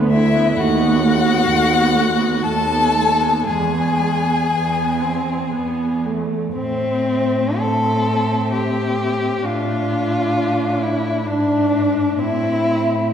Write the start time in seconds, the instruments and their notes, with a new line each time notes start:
Already playing: cello D2, viola B3
0.10 viola A3, violin E4 E5
0.35 viola B3
0.56 cello D#2, viola A3, violin F#4 F#5
0.80 viola B3
1.02 viola A3
1.26 viola B3
1.48 cello D#2, viola A3
1.71 viola B3
1.95 viola A3
2.18 viola B3
2.43 cello D#2, viola A3, violin A4 A5
2.68 viola B3
2.93 viola A3
3.20 viola B3
3.47 cello E2, viola G#3, violin G#4 G#5
3.74 viola B3
4.00 viola G#3
4.25 viola B3
4.51 cello E2, viola B3
5.01 viola C4
5.54 cello E2, viola B3
6.06 viola A3
6.56 cello A2, violin C4 E5, viola C4
7.58 viola C4, violin A4 E5
8.53 violin G4
9.42 cello A2, viola D4, violin F4 E5
10.82 violin E4
11.27 cello G#2, viola D4, violin D4 E5
12.18 cello A2, viola C4, violin E4 E5